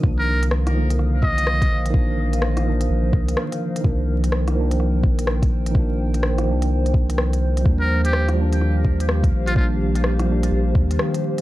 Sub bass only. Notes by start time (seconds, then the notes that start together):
0.03 C2
1.70 A#1
2.89 A#1
3.13 C2
3.85 C2
5.03 A#1
6.47 C2
7.66 D#2
9.32 A#1
10.51 A#1
10.75 D#2